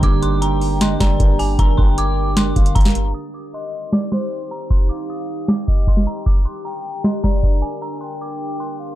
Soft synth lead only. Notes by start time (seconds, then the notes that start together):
0.42 G5
0.81 D#5
1.00 D5
1.78 G5
2.56 F5
3.53 D#5
3.92 D5
4.12 C5
4.90 F5
5.67 D#5
6.65 G5
7.04 D#5
7.24 D5
8.02 G5
8.79 F5